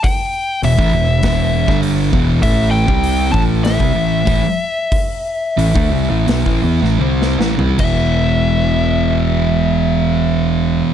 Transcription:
<<
  \new Staff \with { instrumentName = "Lead electric guitar" } { \time 4/4 \key e \minor \tempo 4 = 92 g''4 e''2 r4 | e''8 g''4 a''8 e''2~ | e''2. r4 | e''1 | }
  \new Staff \with { instrumentName = "Distorted electric guitar" } { \clef bass \time 4/4 \key e \minor r4 <e, b,>16 <a, e>16 <e, b,>8 <e, b, e>8. <g, d g>8. <e, b, e>8 | <a, e a>8. <c g c'>8. <a, e a>8. <c g>16 <a, e>8 <a, e>16 r8. | r4 <a, e>16 <d a>16 <c g>16 <a, e>16 <b, fis>16 <a, e>16 <e b>16 <a, e>16 <c g c'>8 <a, e>16 <c g>16 | <e, b, e>1 | }
  \new Staff \with { instrumentName = "Distorted electric guitar" } { \clef bass \time 4/4 \key e \minor r4 <e, b,>16 <a, e>16 <e, b,>8 <e, b, e>8. <g, d g>8. <e, b, e>8 | <a, e a>8. <c g c'>8. <a, e a>8. <c g>16 <a, e>8 <a, e>16 r8. | r4 <a, e>16 <d a>16 <c g>16 <a, e>16 <b, fis>16 <a, e>16 <e b>16 <a, e>16 <c g c'>8 <a, e>16 <c g>16 | <e, b, e>1 | }
  \new Staff \with { instrumentName = "Picked electric bass" } { \clef bass \time 4/4 \key e \minor r4 e,,16 a,,16 e,,8 e,,8. g,,8. e,,8 | a,,8. c,8. a,,8. c,16 a,,8 a,,16 r8. | r4 a,,16 d,16 c,16 a,,16 b,,16 a,,16 e,16 a,,16 c,8 a,,16 c,16 | e,,1 | }
  \new DrumStaff \with { instrumentName = "Drums" } \drummode { \time 4/4 <hho bd>4 hho16 bd8. <hho bd sn>8. <bd sn>16 hho8 bd8 | <hho bd>8. bd16 hho8 bd8 <hho sn>16 bd8. <hho bd>4 | <hho bd>4 hho16 bd8. <hho sn>16 bd8 sn16 tommh16 sn16 sn16 tomfh16 | <cymc bd>4 r4 r4 r4 | }
>>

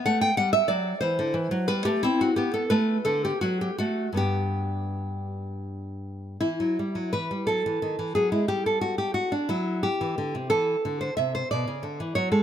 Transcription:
\new Staff \with { instrumentName = "Nylon-string guitar" } { \time 6/8 \key g \major \tempo 4. = 59 << { fis''16 g''16 fis''16 e''16 d''8 c''4 b'16 g'16 | e'16 fis'16 g'16 a'16 b'8 a'16 g'16 fis'16 g'16 fis'8 | g'4. r4. | \key e \minor e'4 b'8 a'4 gis'16 e'16 |
g'16 a'16 fis'16 g'16 fis'16 d'16 e'8 g'4 | a'8. c''16 e''16 c''16 d''4 cis''16 a'16 | } \\ { a8 g8 fis8 e16 d16 e16 fis16 g16 a16 | c'8 b8 a8 d8 fis8 a8 | <g, b d'>2. | e16 fis16 g16 fis16 e16 g16 fis16 e16 dis16 e16 fis16 gis16 |
g4. fis8. e16 d16 c16 | e8 d8 c8 b,16 cis16 d16 e16 fis16 gis16 | } >> }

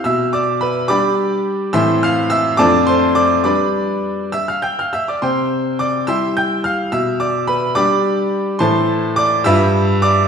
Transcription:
\new Staff \with { instrumentName = "Grand piano" } { \time 6/8 \key g \mixolydian \tempo 4. = 70 << { <e'' e'''>8 <d'' d'''>8 <b' b''>8 <d'' b'' d'''>4. | <e'' c''' e'''>8 <f'' f'''>8 <e'' e'''>8 <d'' a'' d'''>8 <c'' c'''>8 <d'' d'''>8 | <d'' b'' d'''>4. <e'' e'''>16 <f'' f'''>16 <g'' g'''>16 <f'' f'''>16 <e'' e'''>16 <d'' d'''>16 | <c'' g'' c'''>4 <d'' d'''>8 <e'' c''' e'''>8 <g'' g'''>8 <f'' f'''>8 |
<e'' e'''>8 <d'' d'''>8 <b' b''>8 <d'' b'' d'''>4. | <c'' a'' c'''>4 <d'' d'''>8 <e'' e'''>4 <d'' d'''>8 | } \\ { b,4. <g d' g'>4. | <a, e c' c''>4. <f, a d' c''>4. | <g d' b'>4. r4. | c4. <g e' g'>4. |
b,4. <g d' g'>4. | <a, e e' a'>4. <g, g f' b'>4. | } >> }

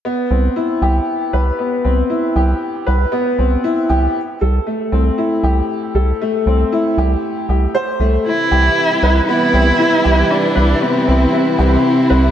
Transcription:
<<
  \new Staff \with { instrumentName = "Upright piano" } { \time 4/4 \key c \major \tempo 4 = 117 b8 c'8 e'8 g'8 r8 b'8 b8 c'8 | e'8 g'8 r8 b'8 b8 c'8 e'8 g'8 | r8 a'8 a8 c'8 e'8 g'8 r8 a'8 | a8 c'8 e'8 g'8 r8 g'8 c''8 a8 |
e'8 g'8 r8 b'8 b8 c'8 e'8 g'8 | r8 b'8 b8 c'8 e'8 g'8 r8 b'8 | }
  \new Staff \with { instrumentName = "Cello" } { \time 4/4 \key c \major r1 | r1 | r1 | r1 |
e'2 e'2 | d'4 c'4. c'4. | }
  \new Staff \with { instrumentName = "String section" } { \clef bass \time 4/4 \key c \major r1 | r1 | r1 | r1 |
<c e g e' b'>1~ | <c e g e' b'>1 | }
  \new Staff \with { instrumentName = "Analog synth bass" } { \clef bass \time 4/4 \key c \major r8 c,8 r8 c,8 r8 c,8 r8 c,8 | r8 c,8 r8 c,8 r8 c,8 r8 c,8 | r8 c,8 r8 c,8 r8 c,8 r8 c,8 | r8 c,8 r8 c,8 r8 c,8 r8 c,8 |
r8 c,8 r8 c,8 r8 c,8 r8 c,8 | r8 c,8 r8 c,8 r8 c,8 r8 c,8 | }
>>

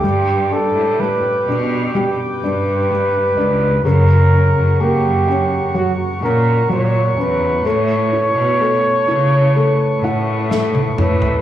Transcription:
<<
  \new Staff \with { instrumentName = "Woodwind section" } { \time 4/4 \key g \lydian \tempo 4 = 63 << { d'''1 | cis'''1~ | cis'''1 | } \\ { <b' g''>1 | <fis'' ais''>1 | <b' a''>1 | } >> }
  \new Staff \with { instrumentName = "Flugelhorn" } { \time 4/4 \key g \lydian g'8 a'8 b'8 r8 g'8 b'4. | ais'4 g'4 fis'8 ais'8 cis''8 b'8 | cis''2. r8 b'8 | }
  \new Staff \with { instrumentName = "Felt piano" } { \time 4/4 \key g \lydian g8 d'8 g8 d'8 g8 d'8 g8 d'8 | cis8 cis'8 ais8 cis'8 fis8 cis'8 fis8 cis'8 | a8 e'8 a8 e'8 a8 <e' fis''>8 <a e''>8 <e' cis''>8 | }
  \new Staff \with { instrumentName = "Cello section" } { \clef bass \time 4/4 \key g \lydian g,8. a,8 r16 b,8. r16 g,4 cis,8 | fis,8. fis,4. r16 ais,8 ais,8 e,8 | a,8. b,8 r16 cis8. r16 a,4 a,8 | }
  \new DrumStaff \with { instrumentName = "Drums" } \drummode { \time 4/4 r4 r4 r4 r4 | r4 r4 r4 r4 | r4 r4 r4 sn16 tommh16 toml16 tomfh16 | }
>>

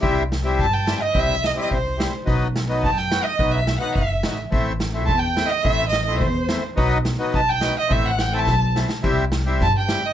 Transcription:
<<
  \new Staff \with { instrumentName = "Violin" } { \time 2/4 \tempo 4 = 107 r4 a''16 g''8 dis''16 | e''8 dis''16 dis''16 c''8. r16 | r4 a''16 g''8 dis''16~ | dis''16 e''8 fis''16 e''8. r16 |
r4 a''16 g''8 dis''16 | e''8 dis''16 dis''16 c''8. r16 | r4 a''16 g''8 dis''16 | e''16 fis''16 g''16 a''8. r8 |
r4 a''16 g''8 dis''16 | }
  \new Staff \with { instrumentName = "Violin" } { \time 2/4 r4 a''8. dis''16 | e''8 dis''16 dis''16 c''8. r16 | r4 a''16 g''8 dis''16~ | dis''16 e''8 fis''16 e''8. r16 |
r4 a''16 g''8 dis''16 | e''8 dis''8 c''8. r16 | r4 a''16 g''8 dis''16 | e''16 fis''8 a''8. r8 |
r2 | }
  \new Staff \with { instrumentName = "Accordion" } { \time 2/4 <g c' e'>8 r16 <g c' e'>16 r8 <g c' e'>16 r16 | <g c' e'>8 r16 <g c' e'>16 r8 <g c' e'>16 r16 | <fis b dis'>8 r16 <fis b dis'>16 r8 <fis b fis'>16 r16 | <fis b dis'>8 r16 <fis b dis'>16 r8 <fis b dis'>16 r16 |
<a c' e'>8 r16 <a c' e'>16 r8 <a c' e'>16 r16 | <a c' e'>8 r16 <a c' e'>16 r8 <a c' e'>16 r16 | <fis b dis'>8 r16 <fis b dis'>16 r8 <fis b dis'>16 r16 | <a c' e'>8 r16 <a c' e'>16 r8 <a c' e'>16 r16 |
<g c' e'>8 r16 <g c' e'>16 r8 <g c' e'>16 r16 | }
  \new Staff \with { instrumentName = "Upright bass" } { \clef bass \time 2/4 c,4 g,4 | c,4 c,4 | b,,4 fis,4 | b,,4 fis,,8 a,,8 |
a,,4 e,4 | a,,4 e,4 | b,,4 b,,4 | a,,4 b,,4 |
c,4 g,4 | }
  \new DrumStaff \with { instrumentName = "Drums" } \drummode { \time 2/4 bd8 sn8 bd8 sn8 | bd8 sn8 bd8 sn8 | bd8 sn8 bd16 sn16 sn8 | bd8 sn8 bd8 sn8 |
bd8 sn8 bd8 sn8 | bd8 sn8 bd8 sn8 | bd8 sn8 bd8 sn8 | bd8 sn8 <bd sn>8 sn16 sn16 |
bd8 sn8 <bd sn>8 sn8 | }
>>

